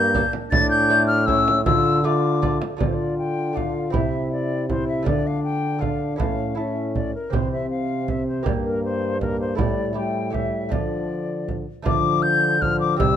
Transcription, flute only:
0, 0, Header, 1, 2, 480
1, 0, Start_track
1, 0, Key_signature, -1, "minor"
1, 0, Tempo, 378072
1, 661, Time_signature, 3, 2, 24, 8
1, 16713, End_track
2, 0, Start_track
2, 0, Title_t, "Flute"
2, 0, Program_c, 0, 73
2, 0, Note_on_c, 0, 91, 120
2, 424, Note_off_c, 0, 91, 0
2, 654, Note_on_c, 0, 93, 127
2, 880, Note_off_c, 0, 93, 0
2, 896, Note_on_c, 0, 91, 125
2, 1354, Note_off_c, 0, 91, 0
2, 1361, Note_on_c, 0, 89, 109
2, 1604, Note_on_c, 0, 88, 115
2, 1623, Note_off_c, 0, 89, 0
2, 2090, Note_off_c, 0, 88, 0
2, 2097, Note_on_c, 0, 88, 107
2, 2605, Note_on_c, 0, 86, 89
2, 2624, Note_off_c, 0, 88, 0
2, 3274, Note_off_c, 0, 86, 0
2, 3557, Note_on_c, 0, 74, 69
2, 3634, Note_off_c, 0, 74, 0
2, 3658, Note_on_c, 0, 72, 63
2, 3733, Note_on_c, 0, 74, 72
2, 3752, Note_off_c, 0, 72, 0
2, 4032, Note_off_c, 0, 74, 0
2, 4039, Note_on_c, 0, 79, 90
2, 4527, Note_on_c, 0, 77, 75
2, 4546, Note_off_c, 0, 79, 0
2, 5003, Note_off_c, 0, 77, 0
2, 5013, Note_on_c, 0, 76, 78
2, 5475, Note_off_c, 0, 76, 0
2, 5487, Note_on_c, 0, 74, 83
2, 5949, Note_off_c, 0, 74, 0
2, 5965, Note_on_c, 0, 72, 89
2, 6189, Note_off_c, 0, 72, 0
2, 6197, Note_on_c, 0, 76, 85
2, 6428, Note_off_c, 0, 76, 0
2, 6439, Note_on_c, 0, 74, 89
2, 6692, Note_on_c, 0, 77, 83
2, 6711, Note_off_c, 0, 74, 0
2, 6900, Note_off_c, 0, 77, 0
2, 6908, Note_on_c, 0, 79, 92
2, 7377, Note_on_c, 0, 77, 75
2, 7396, Note_off_c, 0, 79, 0
2, 7834, Note_off_c, 0, 77, 0
2, 7841, Note_on_c, 0, 77, 79
2, 8346, Note_on_c, 0, 76, 66
2, 8365, Note_off_c, 0, 77, 0
2, 8818, Note_off_c, 0, 76, 0
2, 8826, Note_on_c, 0, 74, 73
2, 9065, Note_off_c, 0, 74, 0
2, 9075, Note_on_c, 0, 70, 69
2, 9331, Note_on_c, 0, 72, 73
2, 9350, Note_off_c, 0, 70, 0
2, 9544, Note_off_c, 0, 72, 0
2, 9552, Note_on_c, 0, 76, 76
2, 9768, Note_off_c, 0, 76, 0
2, 9776, Note_on_c, 0, 77, 82
2, 10284, Note_on_c, 0, 76, 77
2, 10303, Note_off_c, 0, 77, 0
2, 10501, Note_off_c, 0, 76, 0
2, 10508, Note_on_c, 0, 72, 73
2, 10743, Note_off_c, 0, 72, 0
2, 10752, Note_on_c, 0, 74, 77
2, 10828, Note_off_c, 0, 74, 0
2, 10978, Note_on_c, 0, 70, 79
2, 11215, Note_off_c, 0, 70, 0
2, 11229, Note_on_c, 0, 72, 82
2, 11692, Note_off_c, 0, 72, 0
2, 11698, Note_on_c, 0, 70, 89
2, 11932, Note_off_c, 0, 70, 0
2, 11942, Note_on_c, 0, 72, 84
2, 12165, Note_off_c, 0, 72, 0
2, 12172, Note_on_c, 0, 74, 79
2, 12640, Note_off_c, 0, 74, 0
2, 12663, Note_on_c, 0, 79, 89
2, 13123, Note_on_c, 0, 76, 82
2, 13142, Note_off_c, 0, 79, 0
2, 13607, Note_on_c, 0, 74, 68
2, 13626, Note_off_c, 0, 76, 0
2, 14694, Note_off_c, 0, 74, 0
2, 15064, Note_on_c, 0, 86, 97
2, 15520, Note_on_c, 0, 91, 107
2, 15539, Note_off_c, 0, 86, 0
2, 16018, Note_on_c, 0, 89, 95
2, 16037, Note_off_c, 0, 91, 0
2, 16244, Note_off_c, 0, 89, 0
2, 16251, Note_on_c, 0, 86, 102
2, 16476, Note_off_c, 0, 86, 0
2, 16483, Note_on_c, 0, 88, 103
2, 16713, Note_off_c, 0, 88, 0
2, 16713, End_track
0, 0, End_of_file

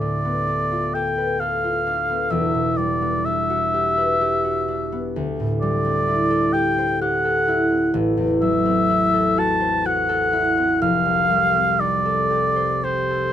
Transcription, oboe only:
0, 0, Header, 1, 2, 480
1, 0, Start_track
1, 0, Tempo, 916031
1, 1210, Time_signature, 3, 2, 24, 8
1, 1210, Tempo, 943396
1, 5050, Tempo, 975610
1, 6010, Tempo, 1052632
1, 6703, End_track
2, 0, Start_track
2, 0, Title_t, "Oboe"
2, 0, Program_c, 0, 68
2, 3, Note_on_c, 0, 74, 87
2, 495, Note_on_c, 0, 79, 78
2, 502, Note_off_c, 0, 74, 0
2, 735, Note_on_c, 0, 77, 75
2, 743, Note_off_c, 0, 79, 0
2, 1208, Note_on_c, 0, 76, 76
2, 1216, Note_off_c, 0, 77, 0
2, 1446, Note_on_c, 0, 74, 80
2, 1454, Note_off_c, 0, 76, 0
2, 1692, Note_on_c, 0, 76, 94
2, 1699, Note_off_c, 0, 74, 0
2, 2662, Note_off_c, 0, 76, 0
2, 2892, Note_on_c, 0, 74, 96
2, 3359, Note_on_c, 0, 79, 99
2, 3366, Note_off_c, 0, 74, 0
2, 3603, Note_off_c, 0, 79, 0
2, 3607, Note_on_c, 0, 78, 97
2, 4071, Note_off_c, 0, 78, 0
2, 4318, Note_on_c, 0, 76, 102
2, 4812, Note_on_c, 0, 81, 95
2, 4820, Note_off_c, 0, 76, 0
2, 5054, Note_on_c, 0, 78, 102
2, 5061, Note_off_c, 0, 81, 0
2, 5521, Note_off_c, 0, 78, 0
2, 5524, Note_on_c, 0, 77, 107
2, 6007, Note_on_c, 0, 74, 101
2, 6014, Note_off_c, 0, 77, 0
2, 6480, Note_on_c, 0, 72, 78
2, 6487, Note_off_c, 0, 74, 0
2, 6703, Note_off_c, 0, 72, 0
2, 6703, End_track
0, 0, End_of_file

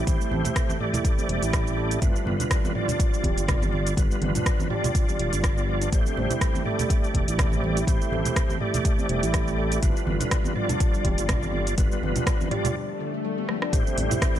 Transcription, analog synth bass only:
0, 0, Header, 1, 2, 480
1, 0, Start_track
1, 0, Key_signature, 0, "minor"
1, 0, Tempo, 487805
1, 71, Time_signature, 4, 2, 24, 8
1, 14163, End_track
2, 0, Start_track
2, 0, Title_t, "Analog synth bass"
2, 0, Program_c, 0, 38
2, 70, Note_on_c, 0, 33, 103
2, 169, Note_off_c, 0, 33, 0
2, 309, Note_on_c, 0, 33, 100
2, 409, Note_off_c, 0, 33, 0
2, 1267, Note_on_c, 0, 28, 82
2, 1368, Note_off_c, 0, 28, 0
2, 1400, Note_on_c, 0, 33, 88
2, 1945, Note_off_c, 0, 33, 0
2, 1986, Note_on_c, 0, 31, 96
2, 2087, Note_off_c, 0, 31, 0
2, 2224, Note_on_c, 0, 31, 103
2, 2326, Note_off_c, 0, 31, 0
2, 3186, Note_on_c, 0, 26, 83
2, 3287, Note_off_c, 0, 26, 0
2, 3322, Note_on_c, 0, 31, 93
2, 3866, Note_off_c, 0, 31, 0
2, 3909, Note_on_c, 0, 31, 99
2, 4009, Note_off_c, 0, 31, 0
2, 4149, Note_on_c, 0, 31, 100
2, 4249, Note_off_c, 0, 31, 0
2, 5111, Note_on_c, 0, 26, 81
2, 5209, Note_off_c, 0, 26, 0
2, 5244, Note_on_c, 0, 31, 88
2, 5787, Note_off_c, 0, 31, 0
2, 5828, Note_on_c, 0, 33, 100
2, 5928, Note_off_c, 0, 33, 0
2, 6070, Note_on_c, 0, 33, 98
2, 6169, Note_off_c, 0, 33, 0
2, 7028, Note_on_c, 0, 28, 82
2, 7128, Note_off_c, 0, 28, 0
2, 7165, Note_on_c, 0, 33, 87
2, 7707, Note_off_c, 0, 33, 0
2, 7747, Note_on_c, 0, 33, 95
2, 7848, Note_off_c, 0, 33, 0
2, 7989, Note_on_c, 0, 33, 99
2, 8088, Note_off_c, 0, 33, 0
2, 8948, Note_on_c, 0, 28, 84
2, 9048, Note_off_c, 0, 28, 0
2, 9082, Note_on_c, 0, 33, 89
2, 9626, Note_off_c, 0, 33, 0
2, 9668, Note_on_c, 0, 31, 103
2, 9768, Note_off_c, 0, 31, 0
2, 9910, Note_on_c, 0, 31, 99
2, 10009, Note_off_c, 0, 31, 0
2, 10871, Note_on_c, 0, 26, 81
2, 10970, Note_off_c, 0, 26, 0
2, 11003, Note_on_c, 0, 31, 90
2, 11547, Note_off_c, 0, 31, 0
2, 11589, Note_on_c, 0, 31, 101
2, 11689, Note_off_c, 0, 31, 0
2, 11828, Note_on_c, 0, 31, 107
2, 11928, Note_off_c, 0, 31, 0
2, 13509, Note_on_c, 0, 33, 100
2, 13609, Note_off_c, 0, 33, 0
2, 13753, Note_on_c, 0, 33, 100
2, 13851, Note_off_c, 0, 33, 0
2, 14163, End_track
0, 0, End_of_file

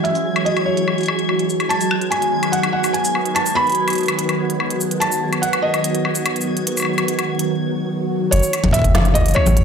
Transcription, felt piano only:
0, 0, Header, 1, 2, 480
1, 0, Start_track
1, 0, Tempo, 413793
1, 58, Time_signature, 4, 2, 24, 8
1, 11187, End_track
2, 0, Start_track
2, 0, Title_t, "Felt piano"
2, 0, Program_c, 0, 0
2, 42, Note_on_c, 0, 76, 80
2, 496, Note_off_c, 0, 76, 0
2, 523, Note_on_c, 0, 75, 83
2, 581, Note_off_c, 0, 75, 0
2, 760, Note_on_c, 0, 73, 81
2, 1683, Note_off_c, 0, 73, 0
2, 1963, Note_on_c, 0, 81, 92
2, 2442, Note_on_c, 0, 80, 87
2, 2465, Note_off_c, 0, 81, 0
2, 2925, Note_on_c, 0, 78, 90
2, 2945, Note_off_c, 0, 80, 0
2, 2983, Note_off_c, 0, 78, 0
2, 3162, Note_on_c, 0, 78, 87
2, 3402, Note_on_c, 0, 80, 91
2, 3417, Note_off_c, 0, 78, 0
2, 3856, Note_off_c, 0, 80, 0
2, 3883, Note_on_c, 0, 81, 99
2, 4122, Note_on_c, 0, 83, 121
2, 4137, Note_off_c, 0, 81, 0
2, 5523, Note_off_c, 0, 83, 0
2, 5802, Note_on_c, 0, 81, 100
2, 6283, Note_on_c, 0, 78, 90
2, 6305, Note_off_c, 0, 81, 0
2, 6522, Note_on_c, 0, 75, 93
2, 6538, Note_off_c, 0, 78, 0
2, 8643, Note_off_c, 0, 75, 0
2, 9640, Note_on_c, 0, 73, 98
2, 10122, Note_on_c, 0, 76, 106
2, 10144, Note_off_c, 0, 73, 0
2, 10600, Note_on_c, 0, 75, 109
2, 10624, Note_off_c, 0, 76, 0
2, 10842, Note_on_c, 0, 73, 117
2, 10856, Note_off_c, 0, 75, 0
2, 11187, Note_off_c, 0, 73, 0
2, 11187, End_track
0, 0, End_of_file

